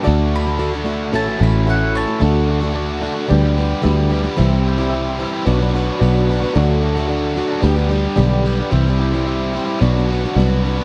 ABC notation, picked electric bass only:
X:1
M:4/4
L:1/8
Q:1/4=111
K:Dmix
V:1 name="Picked electric bass" clef=bass
D,,4 A,,, A,,,3 | D,,4 D,,2 D,,2 | C,,4 B,,,2 B,,,2 | D,,4 D,,2 B,,,2 |
C,,4 B,,,2 C,,2 |]